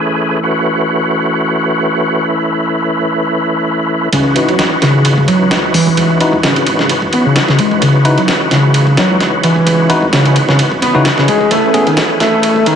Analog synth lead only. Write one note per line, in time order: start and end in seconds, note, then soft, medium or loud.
4.13 4.47 C#3 medium
4.49 4.57 F#3 medium
4.82 5.27 C#3 loud
5.28 5.38 F#3 loud
5.41 5.49 F#3 medium
5.74 6.19 E3 loud
6.44 6.54 C#3 medium
6.56 6.66 C#3 medium
6.80 6.89 C#3 medium
7.13 7.25 B3 loud
7.26 7.36 C#3 loud
7.49 7.59 C#3 medium
7.59 7.81 G#3 medium
7.82 8.17 C#3 medium
8.18 8.26 F#3 medium
8.52 8.97 C#3 loud
8.98 9.08 F#3 loud
9.10 9.19 F#3 medium
9.44 9.89 E3 loud
10.13 10.23 C#3 medium
10.26 10.36 C#3 medium
10.49 10.59 C#3 medium
10.82 10.94 B3 loud
10.95 11.05 C#3 loud
11.18 11.28 C#3 medium
11.29 11.50 G#3 medium
11.51 11.86 A3 medium
11.87 11.96 D#3 medium
12.21 12.66 A3 loud
12.67 12.76 D#3 loud